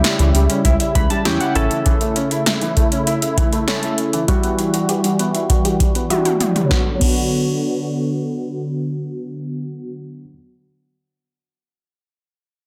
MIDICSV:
0, 0, Header, 1, 6, 480
1, 0, Start_track
1, 0, Key_signature, 2, "minor"
1, 0, Tempo, 606061
1, 1472, Time_signature, 4, 2, 24, 8
1, 10028, End_track
2, 0, Start_track
2, 0, Title_t, "Synth keys"
2, 0, Program_c, 0, 88
2, 0, Note_on_c, 0, 61, 85
2, 0, Note_on_c, 0, 64, 79
2, 0, Note_on_c, 0, 67, 92
2, 388, Note_off_c, 0, 61, 0
2, 388, Note_off_c, 0, 64, 0
2, 388, Note_off_c, 0, 67, 0
2, 753, Note_on_c, 0, 83, 65
2, 864, Note_off_c, 0, 83, 0
2, 874, Note_on_c, 0, 81, 66
2, 985, Note_off_c, 0, 81, 0
2, 993, Note_on_c, 0, 64, 78
2, 994, Note_on_c, 0, 61, 81
2, 994, Note_on_c, 0, 67, 93
2, 994, Note_on_c, 0, 79, 68
2, 1105, Note_off_c, 0, 79, 0
2, 1113, Note_on_c, 0, 78, 69
2, 1222, Note_off_c, 0, 61, 0
2, 1223, Note_off_c, 0, 64, 0
2, 1225, Note_off_c, 0, 78, 0
2, 1232, Note_on_c, 0, 61, 87
2, 1232, Note_on_c, 0, 76, 67
2, 1233, Note_off_c, 0, 67, 0
2, 1233, Note_on_c, 0, 64, 80
2, 1233, Note_on_c, 0, 69, 96
2, 1456, Note_off_c, 0, 76, 0
2, 2068, Note_off_c, 0, 61, 0
2, 2068, Note_off_c, 0, 64, 0
2, 2068, Note_off_c, 0, 69, 0
2, 2913, Note_on_c, 0, 61, 82
2, 2913, Note_on_c, 0, 64, 76
2, 2913, Note_on_c, 0, 69, 95
2, 3330, Note_off_c, 0, 61, 0
2, 3330, Note_off_c, 0, 64, 0
2, 3330, Note_off_c, 0, 69, 0
2, 3390, Note_on_c, 0, 64, 75
2, 3391, Note_on_c, 0, 55, 83
2, 3391, Note_on_c, 0, 66, 90
2, 4227, Note_off_c, 0, 55, 0
2, 4227, Note_off_c, 0, 64, 0
2, 4227, Note_off_c, 0, 66, 0
2, 4834, Note_on_c, 0, 55, 80
2, 4834, Note_on_c, 0, 64, 73
2, 4835, Note_on_c, 0, 66, 86
2, 5251, Note_off_c, 0, 55, 0
2, 5251, Note_off_c, 0, 64, 0
2, 5251, Note_off_c, 0, 66, 0
2, 5299, Note_on_c, 0, 59, 75
2, 5315, Note_on_c, 0, 62, 68
2, 5330, Note_on_c, 0, 66, 81
2, 5439, Note_off_c, 0, 59, 0
2, 5448, Note_off_c, 0, 62, 0
2, 5456, Note_off_c, 0, 66, 0
2, 5540, Note_on_c, 0, 59, 74
2, 5555, Note_on_c, 0, 62, 68
2, 5571, Note_on_c, 0, 66, 82
2, 8113, Note_off_c, 0, 59, 0
2, 8128, Note_off_c, 0, 62, 0
2, 8144, Note_off_c, 0, 66, 0
2, 10028, End_track
3, 0, Start_track
3, 0, Title_t, "Felt piano"
3, 0, Program_c, 1, 0
3, 33, Note_on_c, 1, 76, 88
3, 98, Note_off_c, 1, 76, 0
3, 154, Note_on_c, 1, 52, 66
3, 218, Note_off_c, 1, 52, 0
3, 273, Note_on_c, 1, 55, 72
3, 338, Note_off_c, 1, 55, 0
3, 394, Note_on_c, 1, 61, 72
3, 458, Note_off_c, 1, 61, 0
3, 513, Note_on_c, 1, 64, 90
3, 577, Note_off_c, 1, 64, 0
3, 633, Note_on_c, 1, 76, 76
3, 697, Note_off_c, 1, 76, 0
3, 753, Note_on_c, 1, 52, 74
3, 818, Note_off_c, 1, 52, 0
3, 873, Note_on_c, 1, 55, 68
3, 937, Note_off_c, 1, 55, 0
3, 993, Note_on_c, 1, 61, 82
3, 1057, Note_off_c, 1, 61, 0
3, 1112, Note_on_c, 1, 64, 74
3, 1177, Note_off_c, 1, 64, 0
3, 1352, Note_on_c, 1, 52, 67
3, 1417, Note_off_c, 1, 52, 0
3, 1471, Note_on_c, 1, 52, 83
3, 1536, Note_off_c, 1, 52, 0
3, 1592, Note_on_c, 1, 57, 69
3, 1657, Note_off_c, 1, 57, 0
3, 1712, Note_on_c, 1, 61, 77
3, 1777, Note_off_c, 1, 61, 0
3, 1832, Note_on_c, 1, 64, 74
3, 1897, Note_off_c, 1, 64, 0
3, 1952, Note_on_c, 1, 76, 84
3, 2017, Note_off_c, 1, 76, 0
3, 2071, Note_on_c, 1, 52, 66
3, 2136, Note_off_c, 1, 52, 0
3, 2192, Note_on_c, 1, 57, 71
3, 2257, Note_off_c, 1, 57, 0
3, 2313, Note_on_c, 1, 61, 68
3, 2377, Note_off_c, 1, 61, 0
3, 2433, Note_on_c, 1, 64, 85
3, 2498, Note_off_c, 1, 64, 0
3, 2553, Note_on_c, 1, 76, 75
3, 2617, Note_off_c, 1, 76, 0
3, 2672, Note_on_c, 1, 52, 73
3, 2737, Note_off_c, 1, 52, 0
3, 2792, Note_on_c, 1, 57, 68
3, 2857, Note_off_c, 1, 57, 0
3, 2912, Note_on_c, 1, 61, 82
3, 2977, Note_off_c, 1, 61, 0
3, 3033, Note_on_c, 1, 64, 74
3, 3097, Note_off_c, 1, 64, 0
3, 3273, Note_on_c, 1, 52, 68
3, 3338, Note_off_c, 1, 52, 0
3, 3393, Note_on_c, 1, 55, 84
3, 3458, Note_off_c, 1, 55, 0
3, 3513, Note_on_c, 1, 59, 70
3, 3577, Note_off_c, 1, 59, 0
3, 3633, Note_on_c, 1, 64, 73
3, 3698, Note_off_c, 1, 64, 0
3, 3752, Note_on_c, 1, 66, 75
3, 3817, Note_off_c, 1, 66, 0
3, 3873, Note_on_c, 1, 67, 82
3, 3937, Note_off_c, 1, 67, 0
3, 3993, Note_on_c, 1, 55, 65
3, 4057, Note_off_c, 1, 55, 0
3, 4113, Note_on_c, 1, 59, 73
3, 4178, Note_off_c, 1, 59, 0
3, 4233, Note_on_c, 1, 64, 67
3, 4297, Note_off_c, 1, 64, 0
3, 4354, Note_on_c, 1, 66, 86
3, 4418, Note_off_c, 1, 66, 0
3, 4473, Note_on_c, 1, 67, 74
3, 4538, Note_off_c, 1, 67, 0
3, 4594, Note_on_c, 1, 55, 70
3, 4658, Note_off_c, 1, 55, 0
3, 4713, Note_on_c, 1, 59, 67
3, 4778, Note_off_c, 1, 59, 0
3, 4834, Note_on_c, 1, 64, 79
3, 4898, Note_off_c, 1, 64, 0
3, 4953, Note_on_c, 1, 66, 71
3, 5018, Note_off_c, 1, 66, 0
3, 5193, Note_on_c, 1, 55, 63
3, 5258, Note_off_c, 1, 55, 0
3, 5265, Note_on_c, 1, 54, 76
3, 5297, Note_on_c, 1, 59, 67
3, 5329, Note_on_c, 1, 62, 69
3, 5361, Note_on_c, 1, 66, 82
3, 5421, Note_off_c, 1, 54, 0
3, 5438, Note_off_c, 1, 59, 0
3, 5455, Note_off_c, 1, 62, 0
3, 5472, Note_off_c, 1, 66, 0
3, 5505, Note_on_c, 1, 54, 75
3, 5537, Note_on_c, 1, 59, 67
3, 5568, Note_on_c, 1, 62, 66
3, 5600, Note_on_c, 1, 66, 82
3, 8078, Note_off_c, 1, 54, 0
3, 8110, Note_off_c, 1, 59, 0
3, 8141, Note_off_c, 1, 62, 0
3, 8173, Note_off_c, 1, 66, 0
3, 10028, End_track
4, 0, Start_track
4, 0, Title_t, "Analog synth pad"
4, 0, Program_c, 2, 89
4, 0, Note_on_c, 2, 49, 75
4, 0, Note_on_c, 2, 55, 71
4, 0, Note_on_c, 2, 64, 82
4, 1215, Note_off_c, 2, 64, 0
4, 1216, Note_off_c, 2, 55, 0
4, 1234, Note_on_c, 2, 57, 69
4, 1234, Note_on_c, 2, 64, 82
4, 3361, Note_off_c, 2, 49, 0
4, 3372, Note_off_c, 2, 57, 0
4, 3372, Note_off_c, 2, 64, 0
4, 3392, Note_on_c, 2, 55, 66
4, 3393, Note_on_c, 2, 52, 71
4, 3394, Note_on_c, 2, 66, 80
4, 5293, Note_off_c, 2, 55, 0
4, 5294, Note_off_c, 2, 52, 0
4, 5294, Note_off_c, 2, 66, 0
4, 5313, Note_on_c, 2, 50, 74
4, 5314, Note_on_c, 2, 59, 70
4, 5314, Note_on_c, 2, 66, 82
4, 7834, Note_off_c, 2, 50, 0
4, 7835, Note_off_c, 2, 59, 0
4, 7835, Note_off_c, 2, 66, 0
4, 10028, End_track
5, 0, Start_track
5, 0, Title_t, "Analog synth bass"
5, 0, Program_c, 3, 38
5, 152, Note_on_c, 3, 37, 93
5, 256, Note_off_c, 3, 37, 0
5, 272, Note_on_c, 3, 37, 101
5, 376, Note_off_c, 3, 37, 0
5, 512, Note_on_c, 3, 37, 96
5, 616, Note_off_c, 3, 37, 0
5, 753, Note_on_c, 3, 37, 90
5, 856, Note_off_c, 3, 37, 0
5, 992, Note_on_c, 3, 40, 85
5, 1095, Note_off_c, 3, 40, 0
5, 1232, Note_on_c, 3, 33, 100
5, 1335, Note_off_c, 3, 33, 0
5, 10028, End_track
6, 0, Start_track
6, 0, Title_t, "Drums"
6, 33, Note_on_c, 9, 38, 97
6, 33, Note_on_c, 9, 42, 74
6, 112, Note_off_c, 9, 38, 0
6, 112, Note_off_c, 9, 42, 0
6, 153, Note_on_c, 9, 42, 54
6, 232, Note_off_c, 9, 42, 0
6, 275, Note_on_c, 9, 42, 57
6, 354, Note_off_c, 9, 42, 0
6, 393, Note_on_c, 9, 42, 50
6, 472, Note_off_c, 9, 42, 0
6, 512, Note_on_c, 9, 36, 83
6, 513, Note_on_c, 9, 42, 69
6, 591, Note_off_c, 9, 36, 0
6, 593, Note_off_c, 9, 42, 0
6, 634, Note_on_c, 9, 42, 54
6, 713, Note_off_c, 9, 42, 0
6, 753, Note_on_c, 9, 36, 97
6, 755, Note_on_c, 9, 42, 75
6, 832, Note_off_c, 9, 36, 0
6, 834, Note_off_c, 9, 42, 0
6, 873, Note_on_c, 9, 42, 49
6, 952, Note_off_c, 9, 42, 0
6, 993, Note_on_c, 9, 38, 102
6, 994, Note_on_c, 9, 42, 71
6, 1072, Note_off_c, 9, 38, 0
6, 1073, Note_off_c, 9, 42, 0
6, 1113, Note_on_c, 9, 42, 50
6, 1192, Note_off_c, 9, 42, 0
6, 1231, Note_on_c, 9, 42, 63
6, 1310, Note_off_c, 9, 42, 0
6, 1353, Note_on_c, 9, 42, 49
6, 1432, Note_off_c, 9, 42, 0
6, 1471, Note_on_c, 9, 42, 78
6, 1472, Note_on_c, 9, 36, 110
6, 1550, Note_off_c, 9, 42, 0
6, 1551, Note_off_c, 9, 36, 0
6, 1591, Note_on_c, 9, 42, 46
6, 1670, Note_off_c, 9, 42, 0
6, 1710, Note_on_c, 9, 42, 63
6, 1789, Note_off_c, 9, 42, 0
6, 1830, Note_on_c, 9, 42, 58
6, 1910, Note_off_c, 9, 42, 0
6, 1951, Note_on_c, 9, 38, 96
6, 1951, Note_on_c, 9, 42, 71
6, 2030, Note_off_c, 9, 38, 0
6, 2030, Note_off_c, 9, 42, 0
6, 2071, Note_on_c, 9, 42, 55
6, 2150, Note_off_c, 9, 42, 0
6, 2191, Note_on_c, 9, 36, 82
6, 2192, Note_on_c, 9, 42, 56
6, 2270, Note_off_c, 9, 36, 0
6, 2271, Note_off_c, 9, 42, 0
6, 2311, Note_on_c, 9, 42, 50
6, 2391, Note_off_c, 9, 42, 0
6, 2431, Note_on_c, 9, 42, 69
6, 2511, Note_off_c, 9, 42, 0
6, 2552, Note_on_c, 9, 42, 54
6, 2631, Note_off_c, 9, 42, 0
6, 2672, Note_on_c, 9, 36, 94
6, 2674, Note_on_c, 9, 42, 71
6, 2752, Note_off_c, 9, 36, 0
6, 2753, Note_off_c, 9, 42, 0
6, 2792, Note_on_c, 9, 42, 49
6, 2871, Note_off_c, 9, 42, 0
6, 2912, Note_on_c, 9, 38, 98
6, 2913, Note_on_c, 9, 42, 70
6, 2991, Note_off_c, 9, 38, 0
6, 2992, Note_off_c, 9, 42, 0
6, 3032, Note_on_c, 9, 42, 52
6, 3111, Note_off_c, 9, 42, 0
6, 3152, Note_on_c, 9, 42, 64
6, 3231, Note_off_c, 9, 42, 0
6, 3273, Note_on_c, 9, 42, 48
6, 3352, Note_off_c, 9, 42, 0
6, 3392, Note_on_c, 9, 36, 111
6, 3392, Note_on_c, 9, 42, 79
6, 3471, Note_off_c, 9, 36, 0
6, 3471, Note_off_c, 9, 42, 0
6, 3512, Note_on_c, 9, 42, 45
6, 3592, Note_off_c, 9, 42, 0
6, 3632, Note_on_c, 9, 42, 61
6, 3711, Note_off_c, 9, 42, 0
6, 3752, Note_on_c, 9, 42, 56
6, 3831, Note_off_c, 9, 42, 0
6, 3872, Note_on_c, 9, 42, 70
6, 3951, Note_off_c, 9, 42, 0
6, 3992, Note_on_c, 9, 42, 52
6, 4072, Note_off_c, 9, 42, 0
6, 4114, Note_on_c, 9, 42, 56
6, 4193, Note_off_c, 9, 42, 0
6, 4234, Note_on_c, 9, 42, 52
6, 4313, Note_off_c, 9, 42, 0
6, 4353, Note_on_c, 9, 36, 84
6, 4354, Note_on_c, 9, 42, 68
6, 4432, Note_off_c, 9, 36, 0
6, 4433, Note_off_c, 9, 42, 0
6, 4475, Note_on_c, 9, 42, 53
6, 4554, Note_off_c, 9, 42, 0
6, 4594, Note_on_c, 9, 36, 96
6, 4596, Note_on_c, 9, 42, 73
6, 4673, Note_off_c, 9, 36, 0
6, 4675, Note_off_c, 9, 42, 0
6, 4714, Note_on_c, 9, 42, 48
6, 4793, Note_off_c, 9, 42, 0
6, 4833, Note_on_c, 9, 48, 50
6, 4835, Note_on_c, 9, 42, 71
6, 4913, Note_off_c, 9, 48, 0
6, 4914, Note_off_c, 9, 42, 0
6, 4953, Note_on_c, 9, 42, 49
6, 4953, Note_on_c, 9, 47, 55
6, 5032, Note_off_c, 9, 42, 0
6, 5032, Note_off_c, 9, 47, 0
6, 5073, Note_on_c, 9, 42, 61
6, 5073, Note_on_c, 9, 45, 80
6, 5152, Note_off_c, 9, 42, 0
6, 5152, Note_off_c, 9, 45, 0
6, 5193, Note_on_c, 9, 43, 81
6, 5194, Note_on_c, 9, 42, 45
6, 5272, Note_off_c, 9, 43, 0
6, 5273, Note_off_c, 9, 42, 0
6, 5313, Note_on_c, 9, 36, 96
6, 5313, Note_on_c, 9, 38, 75
6, 5392, Note_off_c, 9, 36, 0
6, 5392, Note_off_c, 9, 38, 0
6, 5553, Note_on_c, 9, 36, 99
6, 5553, Note_on_c, 9, 49, 77
6, 5632, Note_off_c, 9, 36, 0
6, 5632, Note_off_c, 9, 49, 0
6, 10028, End_track
0, 0, End_of_file